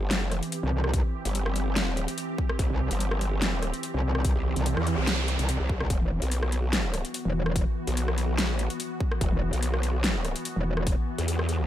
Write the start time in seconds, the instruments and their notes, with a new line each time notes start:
Already playing: wobble bass G1, ambient pad E3 C4 G4
0.11 snare, closed hi-hat
0.17 wobble bass F#1
0.32 cross-stick, closed hi-hat
0.43 closed hi-hat
0.52 closed hi-hat
0.63 wobble bass C2
0.84 cross-stick
0.94 kick, closed hi-hat
1.25 wobble bass G1, closed hi-hat
1.35 closed hi-hat
1.46 cross-stick
1.56 closed hi-hat
1.76 snare, closed hi-hat
1.97 closed hi-hat
2.08 closed hi-hat
2.18 closed hi-hat
2.38 kick
2.49 cross-stick
2.59 wobble bass C2, kick, closed hi-hat
2.70 wobble bass C2
2.91 wobble bass G1, closed hi-hat
3.00 closed hi-hat
3.11 cross-stick
3.21 closed hi-hat
3.42 snare, closed hi-hat
3.62 cross-stick, closed hi-hat
3.74 closed hi-hat
3.83 closed hi-hat
3.94 wobble bass C2
4.15 cross-stick
4.25 kick, closed hi-hat, noise sweep
4.36 wobble bass C2
4.56 wobble bass C2, closed hi-hat
4.66 closed hi-hat
4.77 wobble bass E2, cross-stick
4.87 closed hi-hat
4.98 wobble bass C2
5.07 snare, closed hi-hat
5.28 closed hi-hat
5.39 wobble bass C2, closed hi-hat
5.49 closed hi-hat
5.60 wobble bass C2
5.69 kick
5.80 wobble bass C2, cross-stick
5.90 wobble bass E1, ambient pad E3 B3 F#4, kick, closed hi-hat
6.01 wobble bass E1
6.22 wobble bass B1, closed hi-hat
6.32 closed hi-hat
6.43 cross-stick
6.52 closed hi-hat
6.73 snare, closed hi-hat
6.94 cross-stick, closed hi-hat
7.05 closed hi-hat
7.14 closed hi-hat
7.25 wobble bass E1
7.46 cross-stick
7.56 kick, closed hi-hat
7.87 wobble bass B1, closed hi-hat
7.97 closed hi-hat
8.08 cross-stick
8.18 closed hi-hat
8.38 snare, closed hi-hat
8.44 wobble bass A#1
8.59 closed hi-hat
8.70 closed hi-hat
8.80 closed hi-hat
9.00 kick
9.12 cross-stick
9.21 wobble bass E1, kick, closed hi-hat
9.32 wobble bass E1
9.53 wobble bass B1, closed hi-hat
9.63 closed hi-hat
9.74 cross-stick
9.83 closed hi-hat
10.04 snare, closed hi-hat
10.25 cross-stick, closed hi-hat
10.36 closed hi-hat
10.45 closed hi-hat
10.56 wobble bass E1
10.77 cross-stick
10.87 kick, closed hi-hat
11.18 wobble bass E2, closed hi-hat
11.28 closed hi-hat
11.39 cross-stick
11.49 closed hi-hat